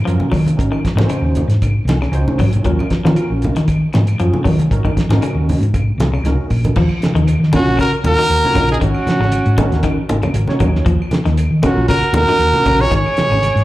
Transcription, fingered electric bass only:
0, 0, Header, 1, 3, 480
1, 0, Start_track
1, 0, Tempo, 514139
1, 548, Time_signature, 4, 2, 24, 8
1, 12735, End_track
2, 0, Start_track
2, 0, Title_t, "Fingered electric bass"
2, 0, Program_c, 0, 33
2, 68, Note_on_c, 0, 42, 96
2, 167, Note_off_c, 0, 42, 0
2, 303, Note_on_c, 0, 51, 83
2, 490, Note_off_c, 0, 51, 0
2, 548, Note_on_c, 0, 32, 91
2, 648, Note_off_c, 0, 32, 0
2, 890, Note_on_c, 0, 44, 93
2, 987, Note_off_c, 0, 44, 0
2, 1131, Note_on_c, 0, 39, 78
2, 1327, Note_off_c, 0, 39, 0
2, 1378, Note_on_c, 0, 44, 88
2, 1658, Note_off_c, 0, 44, 0
2, 1727, Note_on_c, 0, 36, 94
2, 1922, Note_off_c, 0, 36, 0
2, 1977, Note_on_c, 0, 37, 100
2, 2082, Note_off_c, 0, 37, 0
2, 2230, Note_on_c, 0, 44, 90
2, 2417, Note_off_c, 0, 44, 0
2, 2471, Note_on_c, 0, 39, 95
2, 2572, Note_off_c, 0, 39, 0
2, 2846, Note_on_c, 0, 51, 93
2, 2932, Note_off_c, 0, 51, 0
2, 3081, Note_on_c, 0, 34, 74
2, 3268, Note_off_c, 0, 34, 0
2, 3329, Note_on_c, 0, 51, 89
2, 3599, Note_off_c, 0, 51, 0
2, 3685, Note_on_c, 0, 44, 96
2, 3868, Note_off_c, 0, 44, 0
2, 3920, Note_on_c, 0, 42, 96
2, 4019, Note_off_c, 0, 42, 0
2, 4162, Note_on_c, 0, 51, 87
2, 4346, Note_off_c, 0, 51, 0
2, 4398, Note_on_c, 0, 32, 96
2, 4498, Note_off_c, 0, 32, 0
2, 4754, Note_on_c, 0, 44, 87
2, 4846, Note_off_c, 0, 44, 0
2, 4989, Note_on_c, 0, 39, 81
2, 5182, Note_off_c, 0, 39, 0
2, 5230, Note_on_c, 0, 44, 78
2, 5509, Note_off_c, 0, 44, 0
2, 5581, Note_on_c, 0, 36, 89
2, 5774, Note_off_c, 0, 36, 0
2, 5822, Note_on_c, 0, 37, 89
2, 5929, Note_off_c, 0, 37, 0
2, 6070, Note_on_c, 0, 34, 84
2, 6260, Note_off_c, 0, 34, 0
2, 6314, Note_on_c, 0, 39, 104
2, 6416, Note_off_c, 0, 39, 0
2, 6669, Note_on_c, 0, 39, 99
2, 6862, Note_off_c, 0, 39, 0
2, 6907, Note_on_c, 0, 51, 84
2, 7001, Note_off_c, 0, 51, 0
2, 7145, Note_on_c, 0, 34, 83
2, 7240, Note_off_c, 0, 34, 0
2, 7503, Note_on_c, 0, 39, 93
2, 7609, Note_off_c, 0, 39, 0
2, 7744, Note_on_c, 0, 39, 101
2, 7849, Note_off_c, 0, 39, 0
2, 7983, Note_on_c, 0, 34, 88
2, 8174, Note_off_c, 0, 34, 0
2, 8226, Note_on_c, 0, 32, 105
2, 8330, Note_off_c, 0, 32, 0
2, 8583, Note_on_c, 0, 32, 96
2, 8777, Note_off_c, 0, 32, 0
2, 8831, Note_on_c, 0, 44, 90
2, 8922, Note_off_c, 0, 44, 0
2, 9070, Note_on_c, 0, 39, 82
2, 9161, Note_off_c, 0, 39, 0
2, 9418, Note_on_c, 0, 32, 94
2, 9523, Note_off_c, 0, 32, 0
2, 9650, Note_on_c, 0, 32, 98
2, 9758, Note_off_c, 0, 32, 0
2, 9899, Note_on_c, 0, 39, 92
2, 10089, Note_off_c, 0, 39, 0
2, 10132, Note_on_c, 0, 39, 103
2, 10239, Note_off_c, 0, 39, 0
2, 10511, Note_on_c, 0, 39, 100
2, 10699, Note_off_c, 0, 39, 0
2, 10739, Note_on_c, 0, 51, 84
2, 10832, Note_off_c, 0, 51, 0
2, 10982, Note_on_c, 0, 34, 85
2, 11073, Note_off_c, 0, 34, 0
2, 11322, Note_on_c, 0, 39, 91
2, 11431, Note_off_c, 0, 39, 0
2, 11569, Note_on_c, 0, 39, 100
2, 11674, Note_off_c, 0, 39, 0
2, 11821, Note_on_c, 0, 34, 94
2, 12007, Note_off_c, 0, 34, 0
2, 12053, Note_on_c, 0, 32, 106
2, 12156, Note_off_c, 0, 32, 0
2, 12411, Note_on_c, 0, 32, 99
2, 12603, Note_off_c, 0, 32, 0
2, 12655, Note_on_c, 0, 44, 85
2, 12735, Note_off_c, 0, 44, 0
2, 12735, End_track
3, 0, Start_track
3, 0, Title_t, "Muted fingered electric bass strokes"
3, 794, Note_on_c, 9, 29, 34
3, 888, Note_off_c, 9, 29, 0
3, 2711, Note_on_c, 9, 29, 35
3, 2805, Note_off_c, 9, 29, 0
3, 4643, Note_on_c, 9, 29, 36
3, 4737, Note_off_c, 9, 29, 0
3, 6540, Note_on_c, 9, 29, 36
3, 6633, Note_off_c, 9, 29, 0
3, 7394, Note_on_c, 9, 29, 38
3, 7487, Note_off_c, 9, 29, 0
3, 8455, Note_on_c, 9, 29, 39
3, 8548, Note_off_c, 9, 29, 0
3, 9313, Note_on_c, 9, 29, 37
3, 9406, Note_off_c, 9, 29, 0
3, 10392, Note_on_c, 9, 29, 38
3, 10485, Note_off_c, 9, 29, 0
3, 11217, Note_on_c, 9, 29, 40
3, 11310, Note_off_c, 9, 29, 0
3, 12284, Note_on_c, 9, 29, 37
3, 12377, Note_off_c, 9, 29, 0
3, 12735, End_track
0, 0, End_of_file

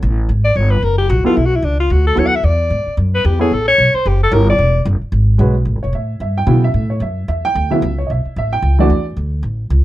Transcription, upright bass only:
0, 0, Header, 1, 3, 480
1, 0, Start_track
1, 0, Tempo, 268938
1, 516, Time_signature, 4, 2, 24, 8
1, 17568, End_track
2, 0, Start_track
2, 0, Title_t, "Upright bass"
2, 0, Program_c, 0, 32
2, 44, Note_on_c, 0, 33, 99
2, 505, Note_off_c, 0, 33, 0
2, 516, Note_on_c, 0, 32, 85
2, 980, Note_off_c, 0, 32, 0
2, 990, Note_on_c, 0, 31, 86
2, 1456, Note_off_c, 0, 31, 0
2, 1470, Note_on_c, 0, 30, 85
2, 1936, Note_off_c, 0, 30, 0
2, 1956, Note_on_c, 0, 34, 100
2, 2213, Note_off_c, 0, 34, 0
2, 2439, Note_on_c, 0, 35, 84
2, 2887, Note_off_c, 0, 35, 0
2, 2898, Note_on_c, 0, 37, 88
2, 3368, Note_off_c, 0, 37, 0
2, 3391, Note_on_c, 0, 38, 88
2, 3855, Note_off_c, 0, 38, 0
2, 3871, Note_on_c, 0, 39, 88
2, 4334, Note_off_c, 0, 39, 0
2, 4344, Note_on_c, 0, 40, 82
2, 4811, Note_off_c, 0, 40, 0
2, 4825, Note_on_c, 0, 44, 78
2, 5085, Note_off_c, 0, 44, 0
2, 5305, Note_on_c, 0, 42, 85
2, 5771, Note_off_c, 0, 42, 0
2, 5793, Note_on_c, 0, 40, 98
2, 6255, Note_off_c, 0, 40, 0
2, 6272, Note_on_c, 0, 33, 77
2, 6734, Note_off_c, 0, 33, 0
2, 6752, Note_on_c, 0, 35, 92
2, 7009, Note_off_c, 0, 35, 0
2, 7237, Note_on_c, 0, 30, 89
2, 7692, Note_off_c, 0, 30, 0
2, 7703, Note_on_c, 0, 31, 104
2, 8169, Note_off_c, 0, 31, 0
2, 8182, Note_on_c, 0, 28, 90
2, 8649, Note_off_c, 0, 28, 0
2, 8664, Note_on_c, 0, 30, 97
2, 8924, Note_off_c, 0, 30, 0
2, 9137, Note_on_c, 0, 32, 90
2, 9607, Note_off_c, 0, 32, 0
2, 9621, Note_on_c, 0, 35, 93
2, 10078, Note_off_c, 0, 35, 0
2, 10089, Note_on_c, 0, 33, 80
2, 10262, Note_off_c, 0, 33, 0
2, 10262, Note_on_c, 0, 31, 53
2, 10407, Note_off_c, 0, 31, 0
2, 10418, Note_on_c, 0, 28, 66
2, 10566, Note_off_c, 0, 28, 0
2, 10577, Note_on_c, 0, 45, 81
2, 11048, Note_off_c, 0, 45, 0
2, 11067, Note_on_c, 0, 43, 78
2, 11530, Note_off_c, 0, 43, 0
2, 11541, Note_on_c, 0, 47, 99
2, 12011, Note_off_c, 0, 47, 0
2, 12028, Note_on_c, 0, 45, 84
2, 12484, Note_off_c, 0, 45, 0
2, 12495, Note_on_c, 0, 42, 78
2, 12969, Note_off_c, 0, 42, 0
2, 12995, Note_on_c, 0, 40, 86
2, 13460, Note_off_c, 0, 40, 0
2, 13480, Note_on_c, 0, 38, 91
2, 13943, Note_off_c, 0, 38, 0
2, 13959, Note_on_c, 0, 37, 92
2, 14423, Note_off_c, 0, 37, 0
2, 14454, Note_on_c, 0, 35, 78
2, 14706, Note_off_c, 0, 35, 0
2, 14927, Note_on_c, 0, 33, 85
2, 15382, Note_off_c, 0, 33, 0
2, 15392, Note_on_c, 0, 37, 90
2, 15861, Note_off_c, 0, 37, 0
2, 15879, Note_on_c, 0, 40, 83
2, 16345, Note_off_c, 0, 40, 0
2, 16358, Note_on_c, 0, 38, 80
2, 16815, Note_off_c, 0, 38, 0
2, 16825, Note_on_c, 0, 33, 81
2, 17299, Note_off_c, 0, 33, 0
2, 17318, Note_on_c, 0, 37, 94
2, 17568, Note_off_c, 0, 37, 0
2, 17568, End_track
3, 0, Start_track
3, 0, Title_t, "Muted upright bass strokes"
3, 2240, Note_on_c, 9, 29, 37
3, 2419, Note_off_c, 9, 29, 0
3, 5115, Note_on_c, 9, 29, 40
3, 5293, Note_off_c, 9, 29, 0
3, 7039, Note_on_c, 9, 29, 43
3, 7218, Note_off_c, 9, 29, 0
3, 8951, Note_on_c, 9, 29, 39
3, 9129, Note_off_c, 9, 29, 0
3, 14727, Note_on_c, 9, 29, 41
3, 14905, Note_off_c, 9, 29, 0
3, 17568, End_track
0, 0, End_of_file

